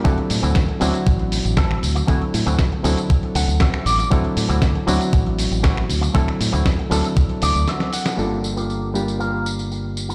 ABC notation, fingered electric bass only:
X:1
M:4/4
L:1/16
Q:1/4=118
K:Dm
V:1 name="Fingered electric bass" clef=bass
D,, z A,, D,, D,, z D,, z A,,,3 A,,,3 D,, z | D,, z A,, D,, D,, z D,, z3 D,, D,, z2 A,,, z | D,, z A,, D,, D,, z D,, z A,,,3 A,,,3 D,, z | D,, z A,, D,, D,, z D,, z3 D,, D,, z4 |
G,,,16 |]